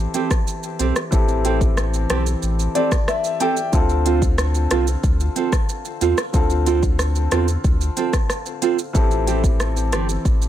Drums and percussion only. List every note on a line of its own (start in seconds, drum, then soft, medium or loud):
0.14 closed hi-hat medium
0.14 shaker medium
0.31 kick loud
0.31 cross-stick medium
0.31 shaker medium
0.47 shaker medium
0.63 shaker medium
0.79 closed hi-hat medium
0.79 shaker medium
0.96 cross-stick medium
0.96 shaker medium
1.12 kick loud
1.12 shaker medium
1.28 shaker medium
1.45 closed hi-hat medium
1.45 shaker medium
1.61 kick medium
1.61 shaker medium
1.77 cross-stick medium
1.77 shaker medium
1.94 shaker medium
2.10 cross-stick loud
2.10 closed hi-hat medium
2.10 shaker medium
2.26 shaker medium
2.43 shaker medium
2.59 shaker medium
2.75 closed hi-hat medium
2.75 shaker medium
2.92 kick loud
2.92 cross-stick medium
2.92 shaker medium
3.08 cross-stick loud
3.08 shaker medium
3.24 shaker medium
3.40 closed hi-hat medium
3.40 shaker medium
3.57 shaker medium
3.73 kick loud
3.73 shaker medium
3.89 shaker soft
4.06 closed hi-hat medium
4.06 shaker medium
4.22 kick medium
4.22 shaker medium
4.38 cross-stick medium
4.38 shaker medium
4.55 shaker medium
4.71 cross-stick loud
4.71 closed hi-hat medium
4.71 shaker medium
4.87 shaker medium
5.03 kick loud
5.03 shaker medium
5.20 shaker medium
5.36 closed hi-hat medium
5.36 shaker medium
5.52 kick loud
5.52 cross-stick medium
5.52 shaker medium
5.69 shaker medium
5.85 shaker medium
6.01 closed hi-hat medium
6.01 shaker medium
6.18 cross-stick medium
6.18 shaker medium
6.34 kick loud
6.34 shaker medium
6.50 shaker medium
6.66 closed hi-hat medium
6.66 shaker medium
6.83 kick medium
6.83 shaker medium
6.99 cross-stick medium
6.99 shaker medium
7.15 shaker medium
7.31 cross-stick loud
7.31 closed hi-hat medium
7.31 shaker medium
7.48 shaker medium
7.64 kick medium
7.64 shaker medium
7.81 shaker medium
7.97 closed hi-hat medium
7.97 shaker medium
8.13 kick loud
8.13 cross-stick medium
8.13 shaker medium
8.30 cross-stick medium
8.30 shaker medium
8.46 shaker medium
8.62 closed hi-hat medium
8.62 shaker medium
8.79 shaker medium
8.95 kick loud
8.95 shaker medium
9.11 shaker medium
9.27 closed hi-hat medium
9.27 shaker medium
9.44 kick medium
9.44 shaker medium
9.60 cross-stick medium
9.60 shaker medium
9.77 shaker medium
9.92 cross-stick loud
9.92 closed hi-hat medium
9.92 shaker medium
10.09 shaker medium
10.25 kick medium
10.25 shaker medium
10.42 shaker medium